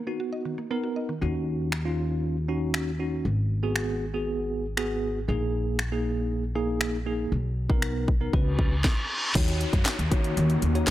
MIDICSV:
0, 0, Header, 1, 8, 480
1, 0, Start_track
1, 0, Key_signature, -6, "minor"
1, 0, Tempo, 508475
1, 1149, Time_signature, 4, 2, 24, 8
1, 10295, End_track
2, 0, Start_track
2, 0, Title_t, "Tine electric piano"
2, 0, Program_c, 0, 4
2, 65, Note_on_c, 0, 59, 74
2, 68, Note_on_c, 0, 63, 67
2, 70, Note_on_c, 0, 66, 82
2, 547, Note_off_c, 0, 59, 0
2, 548, Note_off_c, 0, 63, 0
2, 549, Note_off_c, 0, 66, 0
2, 666, Note_on_c, 0, 59, 89
2, 668, Note_on_c, 0, 63, 77
2, 670, Note_on_c, 0, 70, 90
2, 1051, Note_off_c, 0, 59, 0
2, 1052, Note_off_c, 0, 63, 0
2, 1053, Note_off_c, 0, 70, 0
2, 1147, Note_on_c, 0, 61, 85
2, 1150, Note_on_c, 0, 63, 71
2, 1152, Note_on_c, 0, 66, 90
2, 1628, Note_off_c, 0, 61, 0
2, 1629, Note_off_c, 0, 63, 0
2, 1630, Note_off_c, 0, 66, 0
2, 1747, Note_on_c, 0, 61, 77
2, 1749, Note_on_c, 0, 63, 71
2, 1752, Note_on_c, 0, 65, 87
2, 2228, Note_off_c, 0, 61, 0
2, 2229, Note_off_c, 0, 63, 0
2, 2230, Note_off_c, 0, 65, 0
2, 2346, Note_on_c, 0, 61, 92
2, 2348, Note_on_c, 0, 63, 87
2, 2351, Note_on_c, 0, 66, 99
2, 2731, Note_off_c, 0, 61, 0
2, 2732, Note_off_c, 0, 63, 0
2, 2734, Note_off_c, 0, 66, 0
2, 2826, Note_on_c, 0, 61, 77
2, 2829, Note_on_c, 0, 63, 71
2, 2831, Note_on_c, 0, 66, 85
2, 3068, Note_off_c, 0, 61, 0
2, 3069, Note_off_c, 0, 63, 0
2, 3070, Note_off_c, 0, 66, 0
2, 3426, Note_on_c, 0, 59, 89
2, 3428, Note_on_c, 0, 66, 85
2, 3430, Note_on_c, 0, 68, 95
2, 3811, Note_off_c, 0, 59, 0
2, 3812, Note_off_c, 0, 66, 0
2, 3813, Note_off_c, 0, 68, 0
2, 3905, Note_on_c, 0, 59, 76
2, 3908, Note_on_c, 0, 66, 69
2, 3911, Note_on_c, 0, 68, 88
2, 4387, Note_off_c, 0, 59, 0
2, 4388, Note_off_c, 0, 66, 0
2, 4390, Note_off_c, 0, 68, 0
2, 4505, Note_on_c, 0, 59, 88
2, 4507, Note_on_c, 0, 66, 78
2, 4510, Note_on_c, 0, 68, 100
2, 4891, Note_off_c, 0, 59, 0
2, 4892, Note_off_c, 0, 66, 0
2, 4893, Note_off_c, 0, 68, 0
2, 4986, Note_on_c, 0, 58, 85
2, 4988, Note_on_c, 0, 63, 74
2, 4991, Note_on_c, 0, 68, 90
2, 5467, Note_off_c, 0, 58, 0
2, 5468, Note_off_c, 0, 63, 0
2, 5470, Note_off_c, 0, 68, 0
2, 5586, Note_on_c, 0, 58, 79
2, 5588, Note_on_c, 0, 63, 74
2, 5590, Note_on_c, 0, 68, 85
2, 6067, Note_off_c, 0, 58, 0
2, 6068, Note_off_c, 0, 63, 0
2, 6069, Note_off_c, 0, 68, 0
2, 6186, Note_on_c, 0, 58, 99
2, 6188, Note_on_c, 0, 63, 89
2, 6190, Note_on_c, 0, 68, 107
2, 6571, Note_off_c, 0, 58, 0
2, 6572, Note_off_c, 0, 63, 0
2, 6573, Note_off_c, 0, 68, 0
2, 6665, Note_on_c, 0, 58, 77
2, 6668, Note_on_c, 0, 63, 69
2, 6670, Note_on_c, 0, 68, 88
2, 6907, Note_off_c, 0, 58, 0
2, 6908, Note_off_c, 0, 63, 0
2, 6909, Note_off_c, 0, 68, 0
2, 7265, Note_on_c, 0, 59, 90
2, 7268, Note_on_c, 0, 63, 83
2, 7270, Note_on_c, 0, 70, 98
2, 7651, Note_off_c, 0, 59, 0
2, 7652, Note_off_c, 0, 63, 0
2, 7653, Note_off_c, 0, 70, 0
2, 7747, Note_on_c, 0, 59, 78
2, 7749, Note_on_c, 0, 63, 73
2, 7751, Note_on_c, 0, 70, 85
2, 7867, Note_on_c, 0, 61, 89
2, 7868, Note_off_c, 0, 59, 0
2, 7869, Note_off_c, 0, 63, 0
2, 7869, Note_on_c, 0, 66, 83
2, 7870, Note_off_c, 0, 70, 0
2, 7871, Note_on_c, 0, 71, 97
2, 8252, Note_off_c, 0, 61, 0
2, 8253, Note_off_c, 0, 66, 0
2, 8254, Note_off_c, 0, 71, 0
2, 8826, Note_on_c, 0, 63, 89
2, 8828, Note_on_c, 0, 66, 81
2, 8831, Note_on_c, 0, 73, 93
2, 9403, Note_off_c, 0, 63, 0
2, 9404, Note_off_c, 0, 66, 0
2, 9406, Note_off_c, 0, 73, 0
2, 9545, Note_on_c, 0, 63, 90
2, 9548, Note_on_c, 0, 66, 86
2, 9550, Note_on_c, 0, 73, 100
2, 10027, Note_off_c, 0, 63, 0
2, 10028, Note_off_c, 0, 66, 0
2, 10029, Note_off_c, 0, 73, 0
2, 10146, Note_on_c, 0, 63, 97
2, 10149, Note_on_c, 0, 66, 86
2, 10151, Note_on_c, 0, 73, 109
2, 10295, Note_off_c, 0, 63, 0
2, 10295, Note_off_c, 0, 66, 0
2, 10295, Note_off_c, 0, 73, 0
2, 10295, End_track
3, 0, Start_track
3, 0, Title_t, "Ambient pad"
3, 0, Program_c, 1, 92
3, 8828, Note_on_c, 1, 51, 77
3, 8829, Note_on_c, 1, 58, 73
3, 8829, Note_on_c, 1, 61, 75
3, 8829, Note_on_c, 1, 66, 90
3, 10295, Note_off_c, 1, 51, 0
3, 10295, Note_off_c, 1, 58, 0
3, 10295, Note_off_c, 1, 61, 0
3, 10295, Note_off_c, 1, 66, 0
3, 10295, End_track
4, 0, Start_track
4, 0, Title_t, "Synth arpeggio sound"
4, 0, Program_c, 2, 84
4, 67, Note_on_c, 2, 59, 78
4, 154, Note_off_c, 2, 59, 0
4, 188, Note_on_c, 2, 66, 77
4, 274, Note_off_c, 2, 66, 0
4, 307, Note_on_c, 2, 75, 97
4, 394, Note_off_c, 2, 75, 0
4, 428, Note_on_c, 2, 51, 73
4, 514, Note_off_c, 2, 51, 0
4, 548, Note_on_c, 2, 58, 73
4, 634, Note_off_c, 2, 58, 0
4, 668, Note_on_c, 2, 59, 88
4, 754, Note_off_c, 2, 59, 0
4, 789, Note_on_c, 2, 66, 79
4, 874, Note_off_c, 2, 66, 0
4, 909, Note_on_c, 2, 75, 78
4, 994, Note_off_c, 2, 75, 0
4, 1029, Note_on_c, 2, 51, 86
4, 1115, Note_off_c, 2, 51, 0
4, 10295, End_track
5, 0, Start_track
5, 0, Title_t, "Upright bass"
5, 0, Program_c, 3, 32
5, 1150, Note_on_c, 3, 39, 79
5, 3032, Note_off_c, 3, 39, 0
5, 3068, Note_on_c, 3, 32, 79
5, 4951, Note_off_c, 3, 32, 0
5, 4988, Note_on_c, 3, 34, 82
5, 6871, Note_off_c, 3, 34, 0
5, 6909, Note_on_c, 3, 35, 78
5, 7831, Note_off_c, 3, 35, 0
5, 7867, Note_on_c, 3, 37, 85
5, 8324, Note_off_c, 3, 37, 0
5, 8828, Note_on_c, 3, 39, 100
5, 9088, Note_off_c, 3, 39, 0
5, 9186, Note_on_c, 3, 42, 84
5, 9273, Note_off_c, 3, 42, 0
5, 9429, Note_on_c, 3, 39, 91
5, 9516, Note_off_c, 3, 39, 0
5, 9549, Note_on_c, 3, 51, 98
5, 9722, Note_off_c, 3, 51, 0
5, 9790, Note_on_c, 3, 39, 103
5, 9963, Note_off_c, 3, 39, 0
5, 10029, Note_on_c, 3, 39, 85
5, 10202, Note_off_c, 3, 39, 0
5, 10295, End_track
6, 0, Start_track
6, 0, Title_t, "Downlifter"
6, 0, Program_c, 4, 103
6, 8828, Note_on_c, 4, 60, 75
6, 10295, Note_off_c, 4, 60, 0
6, 10295, End_track
7, 0, Start_track
7, 0, Title_t, "Reverse cymbal"
7, 0, Program_c, 5, 119
7, 7867, Note_on_c, 5, 60, 79
7, 8828, Note_off_c, 5, 60, 0
7, 10295, End_track
8, 0, Start_track
8, 0, Title_t, "Drums"
8, 1626, Note_on_c, 9, 26, 106
8, 1720, Note_off_c, 9, 26, 0
8, 2587, Note_on_c, 9, 26, 109
8, 2681, Note_off_c, 9, 26, 0
8, 3546, Note_on_c, 9, 26, 102
8, 3640, Note_off_c, 9, 26, 0
8, 4506, Note_on_c, 9, 26, 108
8, 4600, Note_off_c, 9, 26, 0
8, 5465, Note_on_c, 9, 26, 105
8, 5560, Note_off_c, 9, 26, 0
8, 6426, Note_on_c, 9, 26, 110
8, 6520, Note_off_c, 9, 26, 0
8, 7265, Note_on_c, 9, 36, 86
8, 7359, Note_off_c, 9, 36, 0
8, 7385, Note_on_c, 9, 26, 101
8, 7479, Note_off_c, 9, 26, 0
8, 7628, Note_on_c, 9, 36, 87
8, 7723, Note_off_c, 9, 36, 0
8, 7867, Note_on_c, 9, 36, 90
8, 7962, Note_off_c, 9, 36, 0
8, 8106, Note_on_c, 9, 36, 96
8, 8201, Note_off_c, 9, 36, 0
8, 8348, Note_on_c, 9, 36, 106
8, 8348, Note_on_c, 9, 38, 91
8, 8442, Note_off_c, 9, 36, 0
8, 8442, Note_off_c, 9, 38, 0
8, 8828, Note_on_c, 9, 36, 109
8, 8828, Note_on_c, 9, 49, 92
8, 8829, Note_on_c, 9, 42, 90
8, 8922, Note_off_c, 9, 36, 0
8, 8923, Note_off_c, 9, 42, 0
8, 8923, Note_off_c, 9, 49, 0
8, 8949, Note_on_c, 9, 42, 46
8, 9044, Note_off_c, 9, 42, 0
8, 9069, Note_on_c, 9, 42, 66
8, 9163, Note_off_c, 9, 42, 0
8, 9185, Note_on_c, 9, 36, 85
8, 9188, Note_on_c, 9, 42, 52
8, 9280, Note_off_c, 9, 36, 0
8, 9282, Note_off_c, 9, 42, 0
8, 9302, Note_on_c, 9, 38, 88
8, 9306, Note_on_c, 9, 39, 110
8, 9308, Note_on_c, 9, 42, 99
8, 9396, Note_off_c, 9, 38, 0
8, 9400, Note_off_c, 9, 39, 0
8, 9402, Note_off_c, 9, 42, 0
8, 9432, Note_on_c, 9, 42, 58
8, 9527, Note_off_c, 9, 42, 0
8, 9549, Note_on_c, 9, 36, 86
8, 9549, Note_on_c, 9, 42, 77
8, 9643, Note_off_c, 9, 36, 0
8, 9643, Note_off_c, 9, 42, 0
8, 9670, Note_on_c, 9, 42, 51
8, 9764, Note_off_c, 9, 42, 0
8, 9791, Note_on_c, 9, 42, 79
8, 9885, Note_off_c, 9, 42, 0
8, 9909, Note_on_c, 9, 42, 51
8, 10003, Note_off_c, 9, 42, 0
8, 10027, Note_on_c, 9, 42, 77
8, 10122, Note_off_c, 9, 42, 0
8, 10150, Note_on_c, 9, 42, 50
8, 10244, Note_off_c, 9, 42, 0
8, 10263, Note_on_c, 9, 38, 91
8, 10295, Note_off_c, 9, 38, 0
8, 10295, End_track
0, 0, End_of_file